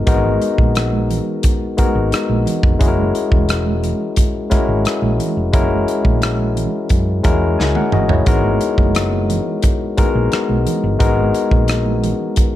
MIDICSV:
0, 0, Header, 1, 5, 480
1, 0, Start_track
1, 0, Key_signature, 5, "minor"
1, 0, Tempo, 683371
1, 51, Time_signature, 4, 2, 24, 8
1, 8821, End_track
2, 0, Start_track
2, 0, Title_t, "Tine electric piano"
2, 0, Program_c, 0, 4
2, 0, Control_c, 0, 64, 127
2, 0, Note_on_c, 0, 56, 68
2, 0, Note_on_c, 0, 59, 57
2, 0, Note_on_c, 0, 63, 66
2, 0, Note_on_c, 0, 66, 59
2, 0, Note_on_c, 0, 70, 77
2, 43, Note_off_c, 0, 56, 0
2, 43, Note_on_c, 0, 56, 70
2, 49, Note_off_c, 0, 59, 0
2, 49, Note_on_c, 0, 59, 72
2, 51, Note_off_c, 0, 63, 0
2, 51, Note_on_c, 0, 63, 68
2, 53, Note_off_c, 0, 66, 0
2, 53, Note_on_c, 0, 66, 68
2, 57, Note_off_c, 0, 70, 0
2, 57, Note_on_c, 0, 70, 75
2, 726, Note_off_c, 0, 56, 0
2, 729, Note_off_c, 0, 59, 0
2, 730, Note_off_c, 0, 63, 0
2, 732, Note_off_c, 0, 66, 0
2, 733, Note_off_c, 0, 70, 0
2, 1245, Note_on_c, 0, 56, 62
2, 1247, Note_on_c, 0, 59, 59
2, 1252, Note_on_c, 0, 63, 61
2, 1254, Note_on_c, 0, 66, 66
2, 1259, Note_on_c, 0, 70, 73
2, 1757, Note_off_c, 0, 56, 0
2, 1759, Note_off_c, 0, 59, 0
2, 1761, Note_off_c, 0, 63, 0
2, 1762, Note_off_c, 0, 66, 0
2, 1764, Note_off_c, 0, 70, 0
2, 1962, Note_on_c, 0, 56, 73
2, 1967, Note_on_c, 0, 61, 62
2, 1970, Note_on_c, 0, 64, 67
2, 1973, Note_on_c, 0, 66, 63
2, 1978, Note_on_c, 0, 68, 67
2, 1981, Control_c, 0, 64, 0
2, 2020, Note_off_c, 0, 68, 0
2, 2021, Note_on_c, 0, 70, 78
2, 2122, Control_c, 0, 64, 127
2, 2646, Note_off_c, 0, 56, 0
2, 2649, Note_off_c, 0, 61, 0
2, 2650, Note_off_c, 0, 64, 0
2, 2651, Note_off_c, 0, 66, 0
2, 2675, Note_off_c, 0, 70, 0
2, 3160, Note_on_c, 0, 56, 71
2, 3164, Note_on_c, 0, 61, 61
2, 3165, Note_on_c, 0, 64, 62
2, 3170, Note_on_c, 0, 66, 66
2, 3173, Note_on_c, 0, 70, 68
2, 3675, Note_off_c, 0, 56, 0
2, 3677, Note_off_c, 0, 61, 0
2, 3678, Note_off_c, 0, 64, 0
2, 3680, Note_off_c, 0, 66, 0
2, 3682, Note_off_c, 0, 70, 0
2, 3881, Note_on_c, 0, 56, 71
2, 3887, Note_on_c, 0, 61, 64
2, 3888, Note_on_c, 0, 64, 67
2, 3892, Note_on_c, 0, 66, 64
2, 3897, Note_on_c, 0, 70, 78
2, 4565, Note_off_c, 0, 56, 0
2, 4569, Note_off_c, 0, 61, 0
2, 4569, Note_off_c, 0, 64, 0
2, 4571, Note_off_c, 0, 66, 0
2, 4573, Note_off_c, 0, 70, 0
2, 5081, Note_on_c, 0, 56, 70
2, 5081, Note_on_c, 0, 61, 55
2, 5085, Note_on_c, 0, 64, 59
2, 5089, Note_on_c, 0, 66, 61
2, 5093, Note_on_c, 0, 70, 78
2, 5328, Note_off_c, 0, 64, 0
2, 5330, Note_off_c, 0, 66, 0
2, 5330, Note_on_c, 0, 80, 58
2, 5332, Note_off_c, 0, 70, 0
2, 5445, Note_off_c, 0, 80, 0
2, 5452, Note_on_c, 0, 78, 59
2, 5458, Note_on_c, 0, 70, 52
2, 5565, Note_off_c, 0, 78, 0
2, 5568, Note_off_c, 0, 70, 0
2, 5572, Note_on_c, 0, 75, 59
2, 5580, Note_on_c, 0, 66, 53
2, 5595, Note_off_c, 0, 56, 0
2, 5596, Note_off_c, 0, 61, 0
2, 5685, Note_off_c, 0, 75, 0
2, 5689, Note_off_c, 0, 66, 0
2, 5692, Note_on_c, 0, 73, 53
2, 5696, Note_on_c, 0, 64, 50
2, 5804, Note_on_c, 0, 56, 73
2, 5808, Note_on_c, 0, 59, 62
2, 5809, Note_on_c, 0, 63, 64
2, 5813, Note_on_c, 0, 66, 67
2, 5817, Note_on_c, 0, 70, 77
2, 5821, Control_c, 0, 64, 0
2, 5920, Note_off_c, 0, 73, 0
2, 5921, Note_off_c, 0, 64, 0
2, 5923, Control_c, 0, 64, 127
2, 6487, Note_off_c, 0, 56, 0
2, 6489, Note_off_c, 0, 59, 0
2, 6489, Note_off_c, 0, 63, 0
2, 6491, Note_off_c, 0, 66, 0
2, 6493, Note_off_c, 0, 70, 0
2, 7005, Note_on_c, 0, 56, 72
2, 7007, Note_on_c, 0, 59, 66
2, 7009, Note_on_c, 0, 63, 60
2, 7013, Note_on_c, 0, 66, 63
2, 7015, Note_on_c, 0, 70, 81
2, 7517, Note_off_c, 0, 56, 0
2, 7518, Note_off_c, 0, 59, 0
2, 7519, Note_off_c, 0, 63, 0
2, 7521, Note_off_c, 0, 66, 0
2, 7522, Note_off_c, 0, 70, 0
2, 7721, Note_on_c, 0, 56, 74
2, 7722, Note_on_c, 0, 59, 68
2, 7725, Note_on_c, 0, 63, 62
2, 7726, Note_on_c, 0, 66, 69
2, 7731, Note_on_c, 0, 70, 79
2, 8405, Note_off_c, 0, 56, 0
2, 8405, Note_off_c, 0, 59, 0
2, 8406, Note_off_c, 0, 63, 0
2, 8407, Note_off_c, 0, 66, 0
2, 8410, Note_off_c, 0, 70, 0
2, 8821, End_track
3, 0, Start_track
3, 0, Title_t, "Fingered electric bass"
3, 0, Program_c, 1, 33
3, 49, Note_on_c, 1, 32, 76
3, 262, Note_off_c, 1, 32, 0
3, 411, Note_on_c, 1, 34, 72
3, 836, Note_off_c, 1, 34, 0
3, 1371, Note_on_c, 1, 32, 85
3, 1477, Note_off_c, 1, 32, 0
3, 1611, Note_on_c, 1, 34, 63
3, 1717, Note_off_c, 1, 34, 0
3, 1851, Note_on_c, 1, 29, 75
3, 1957, Note_off_c, 1, 29, 0
3, 1972, Note_on_c, 1, 30, 90
3, 2184, Note_off_c, 1, 30, 0
3, 2331, Note_on_c, 1, 28, 82
3, 2756, Note_off_c, 1, 28, 0
3, 3291, Note_on_c, 1, 32, 74
3, 3397, Note_off_c, 1, 32, 0
3, 3527, Note_on_c, 1, 34, 72
3, 3635, Note_off_c, 1, 34, 0
3, 3771, Note_on_c, 1, 29, 76
3, 3888, Note_off_c, 1, 29, 0
3, 3888, Note_on_c, 1, 30, 99
3, 4102, Note_off_c, 1, 30, 0
3, 4248, Note_on_c, 1, 34, 77
3, 4674, Note_off_c, 1, 34, 0
3, 4851, Note_on_c, 1, 42, 87
3, 5063, Note_off_c, 1, 42, 0
3, 5092, Note_on_c, 1, 40, 77
3, 5304, Note_off_c, 1, 40, 0
3, 5334, Note_on_c, 1, 37, 74
3, 5439, Note_off_c, 1, 37, 0
3, 5578, Note_on_c, 1, 31, 66
3, 5787, Note_off_c, 1, 31, 0
3, 5807, Note_on_c, 1, 32, 78
3, 6021, Note_off_c, 1, 32, 0
3, 6168, Note_on_c, 1, 30, 78
3, 6594, Note_off_c, 1, 30, 0
3, 7132, Note_on_c, 1, 34, 84
3, 7237, Note_off_c, 1, 34, 0
3, 7371, Note_on_c, 1, 35, 64
3, 7477, Note_off_c, 1, 35, 0
3, 7611, Note_on_c, 1, 31, 84
3, 7717, Note_off_c, 1, 31, 0
3, 7730, Note_on_c, 1, 32, 83
3, 7942, Note_off_c, 1, 32, 0
3, 8087, Note_on_c, 1, 34, 74
3, 8513, Note_off_c, 1, 34, 0
3, 8821, End_track
4, 0, Start_track
4, 0, Title_t, "Muted fingered electric bass strokes"
4, 1255, Note_on_c, 9, 29, 42
4, 1325, Note_off_c, 9, 29, 0
4, 1491, Note_on_c, 9, 29, 35
4, 1562, Note_off_c, 9, 29, 0
4, 3174, Note_on_c, 9, 29, 39
4, 3245, Note_off_c, 9, 29, 0
4, 7013, Note_on_c, 9, 29, 43
4, 7083, Note_off_c, 9, 29, 0
4, 8821, End_track
5, 0, Start_track
5, 0, Title_t, "Drums"
5, 48, Note_on_c, 9, 42, 81
5, 50, Note_on_c, 9, 36, 98
5, 53, Note_on_c, 9, 62, 27
5, 53, Note_on_c, 9, 64, 55
5, 118, Note_off_c, 9, 42, 0
5, 120, Note_off_c, 9, 36, 0
5, 123, Note_off_c, 9, 62, 0
5, 123, Note_off_c, 9, 64, 0
5, 168, Note_on_c, 9, 62, 26
5, 168, Note_on_c, 9, 63, 62
5, 238, Note_off_c, 9, 62, 0
5, 238, Note_off_c, 9, 63, 0
5, 292, Note_on_c, 9, 42, 54
5, 362, Note_off_c, 9, 42, 0
5, 409, Note_on_c, 9, 63, 60
5, 410, Note_on_c, 9, 36, 79
5, 480, Note_off_c, 9, 36, 0
5, 480, Note_off_c, 9, 63, 0
5, 530, Note_on_c, 9, 42, 68
5, 531, Note_on_c, 9, 62, 28
5, 540, Note_on_c, 9, 37, 98
5, 600, Note_off_c, 9, 42, 0
5, 601, Note_off_c, 9, 62, 0
5, 611, Note_off_c, 9, 37, 0
5, 650, Note_on_c, 9, 63, 64
5, 720, Note_off_c, 9, 63, 0
5, 771, Note_on_c, 9, 64, 62
5, 777, Note_on_c, 9, 42, 54
5, 842, Note_off_c, 9, 64, 0
5, 847, Note_off_c, 9, 42, 0
5, 1006, Note_on_c, 9, 42, 86
5, 1009, Note_on_c, 9, 62, 28
5, 1012, Note_on_c, 9, 36, 75
5, 1076, Note_off_c, 9, 42, 0
5, 1079, Note_off_c, 9, 62, 0
5, 1082, Note_off_c, 9, 36, 0
5, 1132, Note_on_c, 9, 62, 28
5, 1203, Note_off_c, 9, 62, 0
5, 1246, Note_on_c, 9, 63, 68
5, 1250, Note_on_c, 9, 42, 63
5, 1254, Note_on_c, 9, 36, 66
5, 1317, Note_off_c, 9, 63, 0
5, 1320, Note_off_c, 9, 42, 0
5, 1324, Note_off_c, 9, 36, 0
5, 1364, Note_on_c, 9, 63, 41
5, 1434, Note_off_c, 9, 63, 0
5, 1491, Note_on_c, 9, 42, 67
5, 1494, Note_on_c, 9, 62, 28
5, 1502, Note_on_c, 9, 37, 92
5, 1561, Note_off_c, 9, 42, 0
5, 1564, Note_off_c, 9, 62, 0
5, 1573, Note_off_c, 9, 37, 0
5, 1610, Note_on_c, 9, 62, 31
5, 1610, Note_on_c, 9, 63, 69
5, 1680, Note_off_c, 9, 62, 0
5, 1680, Note_off_c, 9, 63, 0
5, 1727, Note_on_c, 9, 64, 71
5, 1736, Note_on_c, 9, 42, 60
5, 1798, Note_off_c, 9, 64, 0
5, 1806, Note_off_c, 9, 42, 0
5, 1849, Note_on_c, 9, 36, 92
5, 1920, Note_off_c, 9, 36, 0
5, 1970, Note_on_c, 9, 62, 25
5, 1970, Note_on_c, 9, 64, 55
5, 1971, Note_on_c, 9, 36, 95
5, 1971, Note_on_c, 9, 42, 81
5, 2040, Note_off_c, 9, 62, 0
5, 2040, Note_off_c, 9, 64, 0
5, 2041, Note_off_c, 9, 42, 0
5, 2042, Note_off_c, 9, 36, 0
5, 2086, Note_on_c, 9, 62, 30
5, 2086, Note_on_c, 9, 63, 53
5, 2156, Note_off_c, 9, 62, 0
5, 2156, Note_off_c, 9, 63, 0
5, 2212, Note_on_c, 9, 42, 53
5, 2282, Note_off_c, 9, 42, 0
5, 2330, Note_on_c, 9, 36, 79
5, 2330, Note_on_c, 9, 63, 64
5, 2400, Note_off_c, 9, 36, 0
5, 2401, Note_off_c, 9, 63, 0
5, 2450, Note_on_c, 9, 42, 72
5, 2450, Note_on_c, 9, 62, 29
5, 2460, Note_on_c, 9, 37, 93
5, 2520, Note_off_c, 9, 42, 0
5, 2521, Note_off_c, 9, 62, 0
5, 2531, Note_off_c, 9, 37, 0
5, 2572, Note_on_c, 9, 62, 28
5, 2572, Note_on_c, 9, 63, 68
5, 2642, Note_off_c, 9, 62, 0
5, 2642, Note_off_c, 9, 63, 0
5, 2694, Note_on_c, 9, 42, 62
5, 2695, Note_on_c, 9, 64, 60
5, 2765, Note_off_c, 9, 42, 0
5, 2765, Note_off_c, 9, 64, 0
5, 2925, Note_on_c, 9, 42, 85
5, 2929, Note_on_c, 9, 62, 29
5, 2931, Note_on_c, 9, 36, 72
5, 2995, Note_off_c, 9, 42, 0
5, 2999, Note_off_c, 9, 62, 0
5, 3001, Note_off_c, 9, 36, 0
5, 3055, Note_on_c, 9, 62, 28
5, 3125, Note_off_c, 9, 62, 0
5, 3166, Note_on_c, 9, 63, 66
5, 3169, Note_on_c, 9, 42, 65
5, 3173, Note_on_c, 9, 36, 73
5, 3181, Note_on_c, 9, 37, 30
5, 3237, Note_off_c, 9, 63, 0
5, 3239, Note_off_c, 9, 42, 0
5, 3243, Note_off_c, 9, 36, 0
5, 3251, Note_off_c, 9, 37, 0
5, 3287, Note_on_c, 9, 63, 43
5, 3357, Note_off_c, 9, 63, 0
5, 3408, Note_on_c, 9, 42, 66
5, 3420, Note_on_c, 9, 37, 89
5, 3479, Note_off_c, 9, 42, 0
5, 3490, Note_off_c, 9, 37, 0
5, 3532, Note_on_c, 9, 62, 31
5, 3532, Note_on_c, 9, 63, 67
5, 3602, Note_off_c, 9, 62, 0
5, 3602, Note_off_c, 9, 63, 0
5, 3647, Note_on_c, 9, 64, 61
5, 3652, Note_on_c, 9, 42, 62
5, 3718, Note_off_c, 9, 64, 0
5, 3723, Note_off_c, 9, 42, 0
5, 3887, Note_on_c, 9, 42, 73
5, 3888, Note_on_c, 9, 36, 105
5, 3889, Note_on_c, 9, 62, 26
5, 3889, Note_on_c, 9, 64, 55
5, 3957, Note_off_c, 9, 42, 0
5, 3959, Note_off_c, 9, 36, 0
5, 3959, Note_off_c, 9, 62, 0
5, 3959, Note_off_c, 9, 64, 0
5, 4006, Note_on_c, 9, 62, 29
5, 4006, Note_on_c, 9, 63, 58
5, 4077, Note_off_c, 9, 62, 0
5, 4077, Note_off_c, 9, 63, 0
5, 4131, Note_on_c, 9, 42, 53
5, 4202, Note_off_c, 9, 42, 0
5, 4248, Note_on_c, 9, 36, 84
5, 4249, Note_on_c, 9, 63, 67
5, 4318, Note_off_c, 9, 36, 0
5, 4319, Note_off_c, 9, 63, 0
5, 4368, Note_on_c, 9, 42, 72
5, 4379, Note_on_c, 9, 37, 104
5, 4438, Note_off_c, 9, 42, 0
5, 4449, Note_off_c, 9, 37, 0
5, 4489, Note_on_c, 9, 62, 26
5, 4489, Note_on_c, 9, 63, 63
5, 4559, Note_off_c, 9, 62, 0
5, 4559, Note_off_c, 9, 63, 0
5, 4614, Note_on_c, 9, 42, 60
5, 4616, Note_on_c, 9, 64, 59
5, 4685, Note_off_c, 9, 42, 0
5, 4686, Note_off_c, 9, 64, 0
5, 4843, Note_on_c, 9, 42, 79
5, 4849, Note_on_c, 9, 36, 69
5, 4913, Note_off_c, 9, 42, 0
5, 4919, Note_off_c, 9, 36, 0
5, 4975, Note_on_c, 9, 62, 26
5, 5045, Note_off_c, 9, 62, 0
5, 5086, Note_on_c, 9, 42, 68
5, 5087, Note_on_c, 9, 63, 55
5, 5090, Note_on_c, 9, 36, 79
5, 5098, Note_on_c, 9, 37, 29
5, 5156, Note_off_c, 9, 42, 0
5, 5157, Note_off_c, 9, 63, 0
5, 5161, Note_off_c, 9, 36, 0
5, 5169, Note_off_c, 9, 37, 0
5, 5338, Note_on_c, 9, 38, 46
5, 5408, Note_off_c, 9, 38, 0
5, 5445, Note_on_c, 9, 48, 47
5, 5449, Note_on_c, 9, 62, 29
5, 5449, Note_on_c, 9, 63, 62
5, 5516, Note_off_c, 9, 48, 0
5, 5520, Note_off_c, 9, 62, 0
5, 5520, Note_off_c, 9, 63, 0
5, 5565, Note_on_c, 9, 45, 65
5, 5567, Note_on_c, 9, 64, 64
5, 5635, Note_off_c, 9, 45, 0
5, 5637, Note_off_c, 9, 64, 0
5, 5684, Note_on_c, 9, 43, 76
5, 5754, Note_off_c, 9, 43, 0
5, 5804, Note_on_c, 9, 42, 76
5, 5807, Note_on_c, 9, 36, 102
5, 5811, Note_on_c, 9, 64, 57
5, 5874, Note_off_c, 9, 42, 0
5, 5877, Note_off_c, 9, 36, 0
5, 5881, Note_off_c, 9, 64, 0
5, 5925, Note_on_c, 9, 62, 26
5, 5925, Note_on_c, 9, 63, 61
5, 5995, Note_off_c, 9, 62, 0
5, 5995, Note_off_c, 9, 63, 0
5, 6045, Note_on_c, 9, 42, 56
5, 6116, Note_off_c, 9, 42, 0
5, 6166, Note_on_c, 9, 36, 77
5, 6168, Note_on_c, 9, 63, 68
5, 6236, Note_off_c, 9, 36, 0
5, 6238, Note_off_c, 9, 63, 0
5, 6285, Note_on_c, 9, 42, 81
5, 6296, Note_on_c, 9, 37, 97
5, 6355, Note_off_c, 9, 42, 0
5, 6366, Note_off_c, 9, 37, 0
5, 6407, Note_on_c, 9, 62, 27
5, 6407, Note_on_c, 9, 63, 61
5, 6477, Note_off_c, 9, 62, 0
5, 6477, Note_off_c, 9, 63, 0
5, 6531, Note_on_c, 9, 42, 64
5, 6532, Note_on_c, 9, 64, 62
5, 6601, Note_off_c, 9, 42, 0
5, 6602, Note_off_c, 9, 64, 0
5, 6761, Note_on_c, 9, 42, 87
5, 6769, Note_on_c, 9, 36, 72
5, 6831, Note_off_c, 9, 42, 0
5, 6839, Note_off_c, 9, 36, 0
5, 6893, Note_on_c, 9, 62, 27
5, 6964, Note_off_c, 9, 62, 0
5, 7006, Note_on_c, 9, 63, 68
5, 7007, Note_on_c, 9, 42, 65
5, 7011, Note_on_c, 9, 36, 73
5, 7076, Note_off_c, 9, 63, 0
5, 7077, Note_off_c, 9, 42, 0
5, 7081, Note_off_c, 9, 36, 0
5, 7125, Note_on_c, 9, 63, 38
5, 7195, Note_off_c, 9, 63, 0
5, 7248, Note_on_c, 9, 42, 61
5, 7251, Note_on_c, 9, 62, 26
5, 7259, Note_on_c, 9, 37, 94
5, 7318, Note_off_c, 9, 42, 0
5, 7321, Note_off_c, 9, 62, 0
5, 7329, Note_off_c, 9, 37, 0
5, 7369, Note_on_c, 9, 62, 33
5, 7369, Note_on_c, 9, 63, 60
5, 7439, Note_off_c, 9, 62, 0
5, 7439, Note_off_c, 9, 63, 0
5, 7487, Note_on_c, 9, 64, 67
5, 7492, Note_on_c, 9, 42, 63
5, 7557, Note_off_c, 9, 64, 0
5, 7562, Note_off_c, 9, 42, 0
5, 7728, Note_on_c, 9, 42, 75
5, 7728, Note_on_c, 9, 62, 28
5, 7728, Note_on_c, 9, 64, 55
5, 7729, Note_on_c, 9, 36, 103
5, 7798, Note_off_c, 9, 42, 0
5, 7798, Note_off_c, 9, 62, 0
5, 7798, Note_off_c, 9, 64, 0
5, 7799, Note_off_c, 9, 36, 0
5, 7846, Note_on_c, 9, 62, 27
5, 7846, Note_on_c, 9, 63, 57
5, 7917, Note_off_c, 9, 62, 0
5, 7917, Note_off_c, 9, 63, 0
5, 7969, Note_on_c, 9, 42, 63
5, 8039, Note_off_c, 9, 42, 0
5, 8086, Note_on_c, 9, 63, 61
5, 8088, Note_on_c, 9, 36, 73
5, 8156, Note_off_c, 9, 63, 0
5, 8158, Note_off_c, 9, 36, 0
5, 8204, Note_on_c, 9, 42, 77
5, 8214, Note_on_c, 9, 37, 92
5, 8274, Note_off_c, 9, 42, 0
5, 8285, Note_off_c, 9, 37, 0
5, 8331, Note_on_c, 9, 62, 27
5, 8331, Note_on_c, 9, 63, 68
5, 8401, Note_off_c, 9, 62, 0
5, 8401, Note_off_c, 9, 63, 0
5, 8454, Note_on_c, 9, 42, 63
5, 8456, Note_on_c, 9, 64, 71
5, 8524, Note_off_c, 9, 42, 0
5, 8526, Note_off_c, 9, 64, 0
5, 8683, Note_on_c, 9, 42, 85
5, 8691, Note_on_c, 9, 36, 76
5, 8754, Note_off_c, 9, 42, 0
5, 8761, Note_off_c, 9, 36, 0
5, 8821, End_track
0, 0, End_of_file